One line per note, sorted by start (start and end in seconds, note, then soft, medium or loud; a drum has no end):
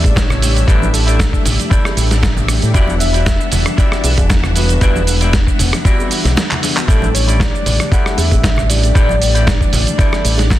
0.00 0.38 E3 medium
0.00 0.39 G3 medium
0.00 0.39 A3 medium
0.00 0.39 D4 medium
0.00 6.88 D4 medium
0.00 0.39 G4 medium
0.00 6.89 E5 medium
0.04 0.64 A1 loud
0.04 kick medium
0.04 closed hi-hat medium
0.04 high bongo medium
0.04 shaker soft
0.09 0.17 D5 medium
0.15 0.69 C#5 loud
0.15 kick loud
0.15 snare loud
0.15 closed hi-hat medium
0.15 high conga loud
0.15 shaker soft
0.30 cross-stick medium
0.30 low conga medium
0.30 shaker soft
0.41 0.65 E3 medium
0.41 0.65 G3 medium
0.41 0.65 A3 medium
0.41 0.65 D4 medium
0.41 0.65 G4 loud
0.41 muted clean electric guitar stroke soft
0.41 open hi-hat loud
0.41 shaker medium
0.56 closed hi-hat medium
0.56 high bongo soft
0.56 shaker soft
0.67 1.29 A1 loud
0.67 2.45 E3 medium
0.67 2.46 G3 medium
0.67 0.87 E4 loud
0.67 0.87 G4 loud
0.67 0.88 A4 loud
0.67 0.95 B4 loud
0.67 0.88 D5 loud
0.67 kick loud
0.67 closed hi-hat medium
0.67 shaker soft
0.82 high conga medium
0.82 shaker soft
0.93 1.45 A4 medium
0.93 open hi-hat loud
0.93 shaker medium
1.07 1.19 E4 medium
1.07 1.19 G4 medium
1.07 1.20 A4 medium
1.07 1.20 D5 loud
1.07 closed hi-hat medium
1.07 shaker soft
1.19 kick loud
1.19 snare loud
1.19 closed hi-hat medium
1.19 shaker soft
1.32 muted clean electric guitar stroke medium
1.32 kick medium
1.32 shaker soft
1.44 1.56 A1 medium
1.44 muted clean electric guitar stroke soft
1.44 open hi-hat loud
1.44 low conga medium
1.44 shaker medium
1.60 closed hi-hat medium
1.60 high conga medium
1.60 shaker soft
1.70 2.10 E4 loud
1.70 2.11 G4 medium
1.70 2.11 A4 medium
1.70 2.11 D5 loud
1.70 kick loud
1.70 closed hi-hat medium
1.70 shaker soft
1.85 cross-stick medium
1.85 high bongo medium
1.85 shaker soft
1.97 2.58 A1 loud
1.97 open hi-hat loud
1.97 shaker medium
2.11 snare soft
2.11 closed hi-hat medium
2.11 high bongo medium
2.11 shaker soft
2.23 kick loud
2.23 snare loud
2.23 closed hi-hat medium
2.23 high conga medium
2.23 shaker soft
2.37 low conga medium
2.37 shaker soft
2.48 2.71 E3 medium
2.48 2.72 G3 medium
2.48 2.72 A3 medium
2.48 2.72 D4 medium
2.48 2.72 G4 loud
2.48 muted clean electric guitar stroke soft
2.48 cross-stick medium
2.48 open hi-hat loud
2.48 high bongo soft
2.48 shaker medium
2.62 2.72 A2 medium
2.62 closed hi-hat medium
2.62 shaker soft
2.74 3.36 E1 loud
2.74 4.52 E3 medium
2.74 4.52 G3 medium
2.74 4.53 B3 medium
2.74 4.53 D4 medium
2.74 2.94 E4 loud
2.74 2.94 F#4 loud
2.74 2.95 G4 loud
2.74 2.95 D5 loud
2.74 kick loud
2.74 closed hi-hat medium
2.74 shaker soft
2.88 high conga medium
2.88 shaker soft
3.00 3.48 E5 loud
3.00 open hi-hat loud
3.00 shaker medium
3.13 3.26 E4 medium
3.13 3.26 F#4 medium
3.13 3.26 G4 medium
3.13 3.26 D5 loud
3.13 closed hi-hat medium
3.13 shaker soft
3.26 kick loud
3.26 snare loud
3.26 closed hi-hat medium
3.26 shaker soft
3.39 muted clean electric guitar stroke medium
3.39 shaker soft
3.51 3.63 E1 medium
3.51 3.64 E5 loud
3.51 muted clean electric guitar stroke soft
3.51 open hi-hat loud
3.51 low conga medium
3.51 shaker medium
3.66 cross-stick medium
3.66 closed hi-hat medium
3.66 high conga medium
3.66 shaker soft
3.77 4.17 E4 loud
3.77 4.18 F#4 medium
3.77 4.18 G4 medium
3.77 4.26 D5 medium
3.77 4.18 D5 loud
3.77 kick loud
3.77 closed hi-hat medium
3.77 shaker soft
3.92 cross-stick medium
3.92 shaker soft
4.04 4.15 B1 medium
4.04 open hi-hat loud
4.04 high bongo medium
4.04 shaker medium
4.18 4.78 E1 loud
4.18 kick medium
4.18 closed hi-hat medium
4.18 high bongo medium
4.18 shaker soft
4.29 kick loud
4.29 snare loud
4.29 closed hi-hat medium
4.29 high conga medium
4.29 shaker soft
4.44 cross-stick medium
4.44 low conga medium
4.44 shaker soft
4.55 4.78 E3 medium
4.55 4.79 G3 medium
4.55 4.79 B3 medium
4.55 4.79 D4 medium
4.55 4.79 F#4 loud
4.55 4.80 B4 loud
4.55 muted clean electric guitar stroke soft
4.55 open hi-hat loud
4.55 shaker medium
4.69 closed hi-hat medium
4.69 high bongo soft
4.69 shaker soft
4.81 5.43 E1 loud
4.81 6.59 E3 medium
4.81 6.60 B3 medium
4.81 5.01 E4 loud
4.81 5.01 F#4 loud
4.81 5.02 G4 loud
4.81 5.30 B4 loud
4.81 5.02 D5 loud
4.81 kick loud
4.81 closed hi-hat medium
4.81 shaker soft
4.96 high bongo soft
4.96 high conga medium
4.96 shaker soft
5.07 open hi-hat loud
5.07 shaker medium
5.21 5.33 E4 medium
5.21 5.33 F#4 medium
5.21 5.33 G4 medium
5.21 5.34 D5 loud
5.21 closed hi-hat medium
5.21 shaker soft
5.33 kick loud
5.33 snare loud
5.33 closed hi-hat medium
5.33 shaker soft
5.47 muted clean electric guitar stroke medium
5.47 kick medium
5.47 shaker soft
5.59 5.70 E1 medium
5.59 muted clean electric guitar stroke soft
5.59 open hi-hat loud
5.59 low conga medium
5.59 shaker medium
5.73 cross-stick medium
5.73 closed hi-hat medium
5.73 high conga medium
5.73 shaker soft
5.85 6.24 E4 loud
5.85 6.25 F#4 medium
5.85 6.25 G4 medium
5.85 6.25 D5 loud
5.85 kick loud
5.85 closed hi-hat medium
5.85 shaker soft
5.99 high bongo medium
5.99 shaker soft
6.11 open hi-hat loud
6.11 shaker medium
6.24 6.34 B1 medium
6.24 snare soft
6.24 closed hi-hat medium
6.24 high bongo medium
6.24 shaker soft
6.36 snare loud
6.36 closed hi-hat medium
6.36 high conga medium
6.36 shaker soft
6.51 clap medium
6.51 low conga medium
6.51 shaker soft
6.62 6.85 E3 medium
6.62 6.85 G3 medium
6.62 6.85 B3 medium
6.62 6.86 D4 medium
6.62 6.86 F#4 loud
6.62 muted clean electric guitar stroke soft
6.62 open hi-hat loud
6.62 high bongo soft
6.62 shaker medium
6.77 clap medium
6.77 shaker soft
6.87 7.49 A1 loud
6.87 8.66 E3 medium
6.87 8.66 G3 medium
6.87 8.66 A3 medium
6.87 8.67 D4 medium
6.87 10.59 D4 medium
6.87 7.08 E4 loud
6.87 7.08 G4 loud
6.87 8.67 G4 medium
6.87 7.08 A4 loud
6.87 7.16 A4 loud
6.87 10.59 D5 medium
6.87 7.09 D5 loud
6.87 kick loud
6.87 closed hi-hat medium
6.87 shaker soft
7.02 high conga medium
7.02 shaker soft
7.14 7.42 C#5 loud
7.14 open hi-hat loud
7.14 shaker medium
7.27 7.40 E4 medium
7.27 7.40 G4 medium
7.27 7.40 A4 medium
7.27 7.41 D5 loud
7.27 closed hi-hat medium
7.27 shaker soft
7.40 7.94 D5 loud
7.40 kick loud
7.40 snare loud
7.40 closed hi-hat medium
7.40 shaker soft
7.53 muted clean electric guitar stroke medium
7.53 shaker soft
7.65 7.77 A1 medium
7.65 muted clean electric guitar stroke soft
7.65 open hi-hat loud
7.65 low conga medium
7.65 shaker medium
7.79 cross-stick medium
7.79 closed hi-hat medium
7.79 high conga medium
7.79 shaker soft
7.91 8.31 E4 loud
7.91 8.32 G4 medium
7.91 8.32 A4 medium
7.91 8.32 D5 loud
7.91 8.20 F#5 loud
7.91 kick loud
7.91 closed hi-hat medium
7.91 shaker soft
8.06 cross-stick medium
8.06 shaker soft
8.17 8.29 E2 medium
8.17 8.71 E5 loud
8.17 open hi-hat loud
8.17 high bongo medium
8.17 shaker medium
8.31 8.91 A1 loud
8.31 kick medium
8.31 closed hi-hat medium
8.31 high bongo medium
8.31 shaker soft
8.43 kick loud
8.43 snare loud
8.43 closed hi-hat medium
8.43 high conga loud
8.43 shaker soft
8.57 cross-stick medium
8.57 low conga loud
8.57 shaker soft
8.69 8.92 E3 medium
8.69 8.92 G3 medium
8.69 8.93 A3 medium
8.69 8.93 D4 medium
8.69 8.93 G4 loud
8.69 10.59 D5 loud
8.69 muted clean electric guitar stroke soft
8.69 open hi-hat loud
8.69 shaker medium
8.82 closed hi-hat medium
8.82 high bongo soft
8.82 shaker soft
8.94 9.56 A1 loud
8.94 10.59 E3 medium
8.94 10.59 G3 medium
8.94 10.59 A3 medium
8.94 10.59 D4 medium
8.94 9.15 E4 loud
8.94 9.15 G4 loud
8.94 10.59 G4 medium
8.94 9.15 A4 loud
8.94 9.16 D5 loud
8.94 kick loud
8.94 closed hi-hat medium
8.94 shaker soft
9.09 high conga loud
9.09 shaker soft
9.22 open hi-hat loud
9.22 shaker medium
9.34 9.47 E4 medium
9.34 9.47 G4 medium
9.34 9.47 A4 medium
9.34 9.47 D5 loud
9.34 closed hi-hat medium
9.34 shaker soft
9.47 kick loud
9.47 snare loud
9.47 closed hi-hat medium
9.47 shaker soft
9.60 muted clean electric guitar stroke medium
9.60 kick medium
9.60 shaker soft
9.72 9.84 A1 medium
9.72 muted clean electric guitar stroke soft
9.72 open hi-hat loud
9.72 low conga medium
9.72 shaker medium
9.87 closed hi-hat medium
9.87 high conga medium
9.87 shaker soft
9.98 10.38 E4 loud
9.98 10.38 G4 medium
9.98 10.39 A4 medium
9.98 10.39 D5 loud
9.98 kick loud
9.98 closed hi-hat medium
9.98 shaker soft
10.12 cross-stick medium
10.12 high bongo medium
10.12 shaker soft
10.25 10.59 A1 loud
10.25 open hi-hat loud
10.25 shaker medium
10.38 snare soft
10.38 closed hi-hat medium
10.38 high bongo medium
10.38 shaker soft
10.50 kick loud
10.50 snare loud
10.50 closed hi-hat medium
10.50 high conga medium
10.50 shaker soft